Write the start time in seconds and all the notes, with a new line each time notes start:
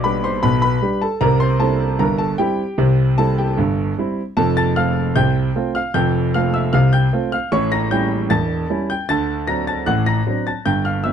Already playing: B1 B2 D5 D6
0.04 G3 D4 G4 B4 B5
0.24 C5 C6
0.43 B1 B2 B4 B5
0.62 B4 B5
0.82 G3 D4 G4
1.01 A4 A5
1.21 C2 C3 A#4 A#5
1.40 C5 C6
1.60 G3 C4 E4 A4 A5
1.99 G1 G2 A#4 A#5
2.18 A4 A5
2.38 G3 C4 E4 G4 G5
2.78 C2 C3
3.18 G3 C4 E4 A4 A5
3.38 G4 G5
3.58 G1 G2
3.98 G3 C4 E4
4.37 F1 F2 A4 A5
4.57 A5 A6
4.76 A3 C4 F4 F5 F6
5.16 C2 C3 G5 G6
5.55 A3 C4 F4
5.75 F5 F6
5.94 F1 F2 G5 G6
6.34 A3 C4 F4 F5 F6
6.54 E5 E6
6.73 C2 C3 F5 F6
6.93 G5 G6
7.13 A3 C4 F4
7.32 F5 F6
7.52 A1 A2 C#5 C#6
7.72 A#5 A#6
7.91 G3 C#4 E4 G5 G6
8.30 E1 E2 A5 A6
8.70 G3 C#4 E4
8.90 G5 G6
9.09 D2 D3 A5 A6
9.47 F#3 C4 D4 A#5 A#6
9.67 A5 A6
9.86 A1 A2 F#5 F#6
10.06 A#5 A#6
10.27 F#3 C4 D4
10.47 A5 A6
10.66 G1 G2 G5 G6
10.85 F5 F6
11.04 F3 B3 D4 E5 E6